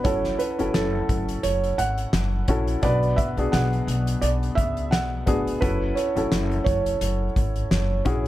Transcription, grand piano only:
0, 0, Header, 1, 2, 480
1, 0, Start_track
1, 0, Tempo, 696460
1, 34, Time_signature, 4, 2, 24, 8
1, 5705, End_track
2, 0, Start_track
2, 0, Title_t, "Grand piano"
2, 0, Program_c, 0, 0
2, 0, Control_c, 0, 64, 127
2, 28, Note_on_c, 0, 61, 60
2, 32, Note_on_c, 0, 64, 59
2, 36, Note_on_c, 0, 66, 56
2, 39, Note_on_c, 0, 69, 72
2, 44, Control_c, 0, 64, 0
2, 181, Control_c, 0, 64, 127
2, 317, Note_off_c, 0, 61, 0
2, 319, Note_off_c, 0, 64, 0
2, 321, Note_off_c, 0, 66, 0
2, 323, Note_off_c, 0, 69, 0
2, 404, Note_on_c, 0, 61, 59
2, 409, Note_on_c, 0, 64, 59
2, 414, Note_on_c, 0, 66, 54
2, 417, Note_on_c, 0, 69, 62
2, 1152, Note_off_c, 0, 61, 0
2, 1154, Note_off_c, 0, 64, 0
2, 1157, Note_off_c, 0, 66, 0
2, 1158, Note_off_c, 0, 69, 0
2, 1711, Note_on_c, 0, 61, 64
2, 1715, Note_on_c, 0, 64, 58
2, 1719, Note_on_c, 0, 66, 61
2, 1723, Note_on_c, 0, 69, 70
2, 1906, Note_off_c, 0, 61, 0
2, 1908, Note_off_c, 0, 64, 0
2, 1910, Note_off_c, 0, 66, 0
2, 1912, Note_off_c, 0, 69, 0
2, 1947, Note_on_c, 0, 59, 69
2, 1953, Note_on_c, 0, 62, 54
2, 1955, Note_on_c, 0, 47, 57
2, 1957, Note_on_c, 0, 66, 58
2, 1962, Note_on_c, 0, 71, 71
2, 1963, Control_c, 0, 64, 0
2, 2105, Control_c, 0, 64, 127
2, 2237, Note_off_c, 0, 59, 0
2, 2240, Note_off_c, 0, 62, 0
2, 2242, Note_off_c, 0, 66, 0
2, 2244, Note_off_c, 0, 71, 0
2, 2325, Note_on_c, 0, 59, 57
2, 2331, Note_on_c, 0, 62, 53
2, 2334, Note_on_c, 0, 66, 57
2, 2336, Note_on_c, 0, 68, 65
2, 2647, Note_off_c, 0, 47, 0
2, 3073, Note_off_c, 0, 59, 0
2, 3076, Note_off_c, 0, 62, 0
2, 3077, Note_off_c, 0, 66, 0
2, 3078, Note_off_c, 0, 68, 0
2, 3628, Note_on_c, 0, 59, 59
2, 3633, Note_on_c, 0, 62, 61
2, 3635, Note_on_c, 0, 66, 61
2, 3638, Note_on_c, 0, 68, 73
2, 3825, Note_off_c, 0, 59, 0
2, 3827, Note_off_c, 0, 62, 0
2, 3828, Note_off_c, 0, 66, 0
2, 3830, Note_off_c, 0, 68, 0
2, 3869, Note_on_c, 0, 61, 63
2, 3871, Note_on_c, 0, 64, 62
2, 3877, Note_on_c, 0, 66, 57
2, 3881, Note_on_c, 0, 69, 67
2, 3882, Control_c, 0, 64, 0
2, 3986, Control_c, 0, 64, 127
2, 4157, Note_off_c, 0, 61, 0
2, 4159, Note_off_c, 0, 64, 0
2, 4161, Note_off_c, 0, 66, 0
2, 4163, Note_off_c, 0, 69, 0
2, 4243, Note_on_c, 0, 61, 58
2, 4247, Note_on_c, 0, 64, 54
2, 4250, Note_on_c, 0, 66, 52
2, 4254, Note_on_c, 0, 69, 66
2, 4992, Note_off_c, 0, 61, 0
2, 4994, Note_off_c, 0, 64, 0
2, 4995, Note_off_c, 0, 66, 0
2, 4997, Note_off_c, 0, 69, 0
2, 5548, Note_on_c, 0, 61, 70
2, 5553, Note_on_c, 0, 64, 60
2, 5557, Note_on_c, 0, 66, 71
2, 5561, Note_on_c, 0, 68, 75
2, 5705, Note_off_c, 0, 61, 0
2, 5705, Note_off_c, 0, 64, 0
2, 5705, Note_off_c, 0, 66, 0
2, 5705, Note_off_c, 0, 68, 0
2, 5705, End_track
0, 0, End_of_file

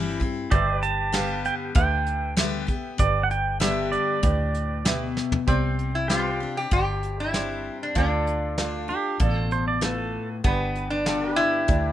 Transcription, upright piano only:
0, 0, Header, 1, 2, 480
1, 0, Start_track
1, 0, Key_signature, 0, "major"
1, 0, Tempo, 620476
1, 402, Time_signature, 4, 2, 24, 8
1, 9224, End_track
2, 0, Start_track
2, 0, Title_t, "Upright piano"
2, 0, Program_c, 0, 0
2, 400, Note_on_c, 0, 67, 76
2, 404, Note_on_c, 0, 71, 73
2, 408, Note_on_c, 0, 74, 86
2, 787, Note_off_c, 0, 67, 0
2, 789, Note_off_c, 0, 71, 0
2, 791, Note_off_c, 0, 74, 0
2, 872, Note_on_c, 0, 67, 81
2, 875, Note_on_c, 0, 71, 75
2, 881, Note_on_c, 0, 77, 84
2, 1262, Note_off_c, 0, 67, 0
2, 1264, Note_off_c, 0, 71, 0
2, 1266, Note_off_c, 0, 77, 0
2, 1354, Note_on_c, 0, 67, 75
2, 1354, Note_on_c, 0, 71, 75
2, 1361, Note_on_c, 0, 76, 86
2, 1742, Note_off_c, 0, 67, 0
2, 1742, Note_off_c, 0, 71, 0
2, 1746, Note_off_c, 0, 76, 0
2, 1837, Note_on_c, 0, 67, 68
2, 1838, Note_on_c, 0, 71, 62
2, 1841, Note_on_c, 0, 76, 78
2, 2223, Note_off_c, 0, 67, 0
2, 2224, Note_off_c, 0, 71, 0
2, 2225, Note_off_c, 0, 76, 0
2, 2314, Note_on_c, 0, 67, 75
2, 2318, Note_on_c, 0, 71, 68
2, 2323, Note_on_c, 0, 74, 79
2, 2701, Note_off_c, 0, 67, 0
2, 2703, Note_off_c, 0, 71, 0
2, 2706, Note_off_c, 0, 74, 0
2, 2793, Note_on_c, 0, 67, 79
2, 2798, Note_on_c, 0, 71, 74
2, 2803, Note_on_c, 0, 74, 82
2, 3180, Note_off_c, 0, 67, 0
2, 3183, Note_off_c, 0, 71, 0
2, 3186, Note_off_c, 0, 74, 0
2, 3272, Note_on_c, 0, 67, 81
2, 3275, Note_on_c, 0, 71, 68
2, 3279, Note_on_c, 0, 74, 92
2, 3660, Note_off_c, 0, 67, 0
2, 3661, Note_off_c, 0, 71, 0
2, 3663, Note_off_c, 0, 74, 0
2, 3750, Note_on_c, 0, 67, 82
2, 3753, Note_on_c, 0, 71, 79
2, 3757, Note_on_c, 0, 76, 96
2, 4139, Note_off_c, 0, 67, 0
2, 4140, Note_off_c, 0, 71, 0
2, 4142, Note_off_c, 0, 76, 0
2, 4230, Note_on_c, 0, 67, 83
2, 4233, Note_on_c, 0, 72, 82
2, 4240, Note_on_c, 0, 74, 97
2, 4619, Note_off_c, 0, 67, 0
2, 4620, Note_off_c, 0, 72, 0
2, 4624, Note_off_c, 0, 74, 0
2, 4715, Note_on_c, 0, 67, 71
2, 4718, Note_on_c, 0, 72, 66
2, 4721, Note_on_c, 0, 77, 75
2, 5102, Note_off_c, 0, 67, 0
2, 5103, Note_off_c, 0, 72, 0
2, 5105, Note_off_c, 0, 77, 0
2, 5199, Note_on_c, 0, 67, 70
2, 5204, Note_on_c, 0, 72, 60
2, 5204, Note_on_c, 0, 74, 75
2, 5584, Note_off_c, 0, 67, 0
2, 5586, Note_off_c, 0, 72, 0
2, 5586, Note_off_c, 0, 74, 0
2, 5676, Note_on_c, 0, 67, 62
2, 5681, Note_on_c, 0, 72, 61
2, 5684, Note_on_c, 0, 74, 73
2, 6063, Note_off_c, 0, 67, 0
2, 6065, Note_off_c, 0, 72, 0
2, 6067, Note_off_c, 0, 74, 0
2, 6152, Note_on_c, 0, 65, 84
2, 6157, Note_on_c, 0, 69, 75
2, 6160, Note_on_c, 0, 74, 105
2, 6541, Note_off_c, 0, 65, 0
2, 6543, Note_off_c, 0, 69, 0
2, 6545, Note_off_c, 0, 74, 0
2, 6638, Note_on_c, 0, 65, 69
2, 6643, Note_on_c, 0, 69, 61
2, 6647, Note_on_c, 0, 74, 77
2, 7024, Note_off_c, 0, 65, 0
2, 7027, Note_off_c, 0, 69, 0
2, 7029, Note_off_c, 0, 74, 0
2, 7121, Note_on_c, 0, 65, 83
2, 7125, Note_on_c, 0, 69, 76
2, 7128, Note_on_c, 0, 74, 96
2, 7506, Note_off_c, 0, 65, 0
2, 7508, Note_off_c, 0, 69, 0
2, 7510, Note_off_c, 0, 74, 0
2, 7601, Note_on_c, 0, 65, 82
2, 7608, Note_on_c, 0, 69, 78
2, 7608, Note_on_c, 0, 71, 93
2, 7987, Note_off_c, 0, 65, 0
2, 7990, Note_off_c, 0, 69, 0
2, 7990, Note_off_c, 0, 71, 0
2, 8082, Note_on_c, 0, 62, 90
2, 8085, Note_on_c, 0, 67, 86
2, 8088, Note_on_c, 0, 71, 102
2, 8468, Note_off_c, 0, 62, 0
2, 8469, Note_off_c, 0, 67, 0
2, 8471, Note_off_c, 0, 71, 0
2, 8560, Note_on_c, 0, 62, 70
2, 8563, Note_on_c, 0, 67, 68
2, 8567, Note_on_c, 0, 74, 80
2, 8947, Note_off_c, 0, 62, 0
2, 8948, Note_off_c, 0, 67, 0
2, 8951, Note_off_c, 0, 74, 0
2, 9033, Note_on_c, 0, 62, 75
2, 9039, Note_on_c, 0, 67, 65
2, 9041, Note_on_c, 0, 74, 79
2, 9224, Note_off_c, 0, 62, 0
2, 9224, Note_off_c, 0, 67, 0
2, 9224, Note_off_c, 0, 74, 0
2, 9224, End_track
0, 0, End_of_file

